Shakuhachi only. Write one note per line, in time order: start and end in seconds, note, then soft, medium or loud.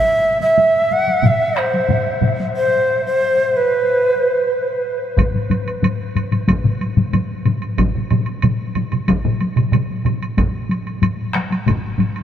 0.00 0.38 E5 medium
0.41 0.94 E5 medium
0.92 1.28 F#5 medium
1.26 1.60 E5 medium
1.59 2.23 C5 medium
2.56 3.02 C5 medium
3.06 3.58 C5 medium
3.57 4.54 B4 medium